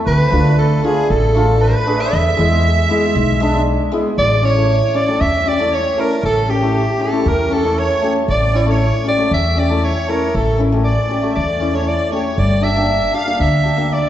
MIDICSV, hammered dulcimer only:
0, 0, Header, 1, 2, 480
1, 0, Start_track
1, 0, Tempo, 514580
1, 52, Time_signature, 4, 2, 24, 8
1, 7252, Tempo, 510638
1, 13191, End_track
2, 0, Start_track
2, 0, Title_t, "Hammered dulcimer"
2, 0, Program_c, 0, 15
2, 285, Note_on_c, 0, 57, 75
2, 298, Note_on_c, 0, 62, 68
2, 303, Note_on_c, 0, 65, 76
2, 410, Note_off_c, 0, 57, 0
2, 416, Note_off_c, 0, 62, 0
2, 419, Note_off_c, 0, 65, 0
2, 767, Note_on_c, 0, 57, 58
2, 779, Note_on_c, 0, 62, 59
2, 787, Note_on_c, 0, 65, 81
2, 892, Note_off_c, 0, 57, 0
2, 898, Note_off_c, 0, 62, 0
2, 902, Note_off_c, 0, 65, 0
2, 1255, Note_on_c, 0, 57, 76
2, 1264, Note_on_c, 0, 62, 55
2, 1275, Note_on_c, 0, 65, 86
2, 1377, Note_off_c, 0, 57, 0
2, 1381, Note_off_c, 0, 62, 0
2, 1387, Note_off_c, 0, 65, 0
2, 1730, Note_on_c, 0, 57, 66
2, 1737, Note_on_c, 0, 62, 60
2, 1746, Note_on_c, 0, 68, 77
2, 1854, Note_off_c, 0, 57, 0
2, 1858, Note_off_c, 0, 62, 0
2, 1863, Note_off_c, 0, 68, 0
2, 2210, Note_on_c, 0, 56, 80
2, 2223, Note_on_c, 0, 59, 67
2, 2231, Note_on_c, 0, 64, 77
2, 2341, Note_off_c, 0, 59, 0
2, 2345, Note_off_c, 0, 64, 0
2, 2686, Note_off_c, 0, 56, 0
2, 2697, Note_on_c, 0, 56, 77
2, 2707, Note_on_c, 0, 59, 64
2, 2712, Note_on_c, 0, 64, 72
2, 2824, Note_off_c, 0, 59, 0
2, 2826, Note_off_c, 0, 64, 0
2, 3163, Note_off_c, 0, 56, 0
2, 3174, Note_on_c, 0, 56, 86
2, 3182, Note_on_c, 0, 59, 63
2, 3194, Note_on_c, 0, 62, 81
2, 3302, Note_off_c, 0, 59, 0
2, 3308, Note_off_c, 0, 62, 0
2, 3642, Note_off_c, 0, 56, 0
2, 3653, Note_on_c, 0, 56, 77
2, 3659, Note_on_c, 0, 59, 66
2, 3669, Note_on_c, 0, 64, 82
2, 3780, Note_off_c, 0, 59, 0
2, 3785, Note_off_c, 0, 64, 0
2, 3947, Note_off_c, 0, 56, 0
2, 4127, Note_on_c, 0, 61, 72
2, 4146, Note_on_c, 0, 64, 72
2, 4194, Note_off_c, 0, 61, 0
2, 4203, Note_off_c, 0, 64, 0
2, 4254, Note_on_c, 0, 57, 56
2, 4265, Note_on_c, 0, 61, 61
2, 4275, Note_on_c, 0, 64, 61
2, 4377, Note_off_c, 0, 57, 0
2, 4383, Note_off_c, 0, 61, 0
2, 4388, Note_off_c, 0, 64, 0
2, 4611, Note_on_c, 0, 61, 68
2, 4629, Note_on_c, 0, 64, 71
2, 4675, Note_off_c, 0, 61, 0
2, 4684, Note_off_c, 0, 64, 0
2, 4732, Note_on_c, 0, 57, 54
2, 4738, Note_on_c, 0, 61, 57
2, 4745, Note_on_c, 0, 67, 61
2, 4856, Note_off_c, 0, 57, 0
2, 4859, Note_off_c, 0, 61, 0
2, 4862, Note_off_c, 0, 67, 0
2, 5091, Note_on_c, 0, 61, 70
2, 5111, Note_on_c, 0, 67, 75
2, 5155, Note_off_c, 0, 61, 0
2, 5165, Note_off_c, 0, 67, 0
2, 5211, Note_on_c, 0, 57, 57
2, 5220, Note_on_c, 0, 61, 60
2, 5230, Note_on_c, 0, 64, 70
2, 5335, Note_off_c, 0, 57, 0
2, 5340, Note_off_c, 0, 61, 0
2, 5345, Note_off_c, 0, 64, 0
2, 5574, Note_on_c, 0, 57, 65
2, 5581, Note_on_c, 0, 61, 55
2, 5591, Note_on_c, 0, 64, 62
2, 5696, Note_off_c, 0, 57, 0
2, 5700, Note_off_c, 0, 61, 0
2, 5705, Note_off_c, 0, 64, 0
2, 6047, Note_on_c, 0, 61, 65
2, 6066, Note_on_c, 0, 67, 81
2, 6112, Note_off_c, 0, 61, 0
2, 6122, Note_off_c, 0, 67, 0
2, 6168, Note_on_c, 0, 57, 68
2, 6181, Note_on_c, 0, 61, 54
2, 6189, Note_on_c, 0, 64, 70
2, 6293, Note_off_c, 0, 57, 0
2, 6299, Note_off_c, 0, 61, 0
2, 6303, Note_off_c, 0, 64, 0
2, 6523, Note_on_c, 0, 61, 57
2, 6542, Note_on_c, 0, 64, 62
2, 6590, Note_off_c, 0, 61, 0
2, 6600, Note_off_c, 0, 64, 0
2, 6638, Note_on_c, 0, 57, 56
2, 6647, Note_on_c, 0, 61, 54
2, 6658, Note_on_c, 0, 64, 68
2, 6767, Note_off_c, 0, 57, 0
2, 6772, Note_off_c, 0, 61, 0
2, 6777, Note_off_c, 0, 64, 0
2, 6997, Note_on_c, 0, 61, 71
2, 7016, Note_on_c, 0, 67, 68
2, 7066, Note_off_c, 0, 61, 0
2, 7076, Note_off_c, 0, 67, 0
2, 7121, Note_on_c, 0, 57, 59
2, 7126, Note_on_c, 0, 61, 58
2, 7133, Note_on_c, 0, 64, 70
2, 7248, Note_off_c, 0, 57, 0
2, 7250, Note_off_c, 0, 61, 0
2, 7254, Note_off_c, 0, 64, 0
2, 7478, Note_on_c, 0, 57, 72
2, 7488, Note_on_c, 0, 61, 60
2, 7497, Note_on_c, 0, 67, 72
2, 7607, Note_off_c, 0, 57, 0
2, 7612, Note_off_c, 0, 61, 0
2, 7617, Note_off_c, 0, 67, 0
2, 7967, Note_on_c, 0, 61, 72
2, 7984, Note_on_c, 0, 64, 89
2, 8033, Note_off_c, 0, 61, 0
2, 8041, Note_off_c, 0, 64, 0
2, 8083, Note_on_c, 0, 57, 68
2, 8089, Note_on_c, 0, 61, 63
2, 8101, Note_on_c, 0, 64, 71
2, 8211, Note_off_c, 0, 57, 0
2, 8214, Note_off_c, 0, 61, 0
2, 8220, Note_off_c, 0, 64, 0
2, 8445, Note_on_c, 0, 61, 67
2, 8468, Note_on_c, 0, 67, 67
2, 8512, Note_off_c, 0, 61, 0
2, 8524, Note_off_c, 0, 67, 0
2, 8564, Note_on_c, 0, 57, 56
2, 8574, Note_on_c, 0, 61, 58
2, 8581, Note_on_c, 0, 67, 66
2, 8692, Note_off_c, 0, 57, 0
2, 8697, Note_off_c, 0, 61, 0
2, 8701, Note_off_c, 0, 67, 0
2, 8930, Note_on_c, 0, 61, 70
2, 8949, Note_on_c, 0, 67, 75
2, 8995, Note_off_c, 0, 61, 0
2, 9005, Note_off_c, 0, 67, 0
2, 9053, Note_on_c, 0, 57, 60
2, 9066, Note_on_c, 0, 61, 60
2, 9072, Note_on_c, 0, 64, 70
2, 9177, Note_off_c, 0, 57, 0
2, 9184, Note_off_c, 0, 61, 0
2, 9187, Note_off_c, 0, 64, 0
2, 9410, Note_on_c, 0, 57, 65
2, 9422, Note_on_c, 0, 61, 60
2, 9432, Note_on_c, 0, 64, 70
2, 9536, Note_off_c, 0, 57, 0
2, 9542, Note_off_c, 0, 61, 0
2, 9547, Note_off_c, 0, 64, 0
2, 9890, Note_on_c, 0, 61, 73
2, 9909, Note_on_c, 0, 64, 76
2, 9956, Note_off_c, 0, 61, 0
2, 9966, Note_off_c, 0, 64, 0
2, 10023, Note_on_c, 0, 57, 66
2, 10033, Note_on_c, 0, 61, 57
2, 10039, Note_on_c, 0, 67, 63
2, 10143, Note_off_c, 0, 57, 0
2, 10148, Note_off_c, 0, 61, 0
2, 10151, Note_off_c, 0, 67, 0
2, 10369, Note_on_c, 0, 61, 61
2, 10389, Note_on_c, 0, 67, 70
2, 10436, Note_off_c, 0, 61, 0
2, 10446, Note_off_c, 0, 67, 0
2, 10490, Note_on_c, 0, 57, 58
2, 10498, Note_on_c, 0, 61, 52
2, 10507, Note_on_c, 0, 67, 59
2, 10616, Note_off_c, 0, 57, 0
2, 10620, Note_off_c, 0, 61, 0
2, 10625, Note_off_c, 0, 67, 0
2, 10847, Note_on_c, 0, 61, 69
2, 10863, Note_on_c, 0, 64, 74
2, 10915, Note_off_c, 0, 61, 0
2, 10923, Note_off_c, 0, 64, 0
2, 10972, Note_on_c, 0, 57, 54
2, 10984, Note_on_c, 0, 61, 52
2, 10992, Note_on_c, 0, 64, 70
2, 11097, Note_off_c, 0, 57, 0
2, 11103, Note_off_c, 0, 61, 0
2, 11107, Note_off_c, 0, 64, 0
2, 11326, Note_on_c, 0, 57, 62
2, 11336, Note_on_c, 0, 61, 53
2, 11348, Note_on_c, 0, 67, 72
2, 11454, Note_off_c, 0, 57, 0
2, 11459, Note_off_c, 0, 61, 0
2, 11465, Note_off_c, 0, 67, 0
2, 11801, Note_on_c, 0, 62, 60
2, 11819, Note_on_c, 0, 67, 64
2, 11871, Note_off_c, 0, 62, 0
2, 11880, Note_off_c, 0, 67, 0
2, 11926, Note_on_c, 0, 58, 56
2, 11933, Note_on_c, 0, 62, 55
2, 11942, Note_on_c, 0, 67, 70
2, 12053, Note_off_c, 0, 58, 0
2, 12057, Note_off_c, 0, 62, 0
2, 12061, Note_off_c, 0, 67, 0
2, 12282, Note_on_c, 0, 62, 57
2, 12299, Note_on_c, 0, 67, 72
2, 12351, Note_off_c, 0, 62, 0
2, 12359, Note_off_c, 0, 67, 0
2, 12406, Note_on_c, 0, 58, 58
2, 12413, Note_on_c, 0, 62, 53
2, 12423, Note_on_c, 0, 67, 62
2, 12533, Note_off_c, 0, 58, 0
2, 12536, Note_off_c, 0, 62, 0
2, 12541, Note_off_c, 0, 67, 0
2, 12760, Note_on_c, 0, 62, 58
2, 12777, Note_on_c, 0, 67, 66
2, 12829, Note_off_c, 0, 62, 0
2, 12838, Note_off_c, 0, 67, 0
2, 12884, Note_on_c, 0, 58, 63
2, 12893, Note_on_c, 0, 62, 51
2, 12905, Note_on_c, 0, 67, 64
2, 13010, Note_off_c, 0, 58, 0
2, 13015, Note_off_c, 0, 62, 0
2, 13021, Note_off_c, 0, 67, 0
2, 13191, End_track
0, 0, End_of_file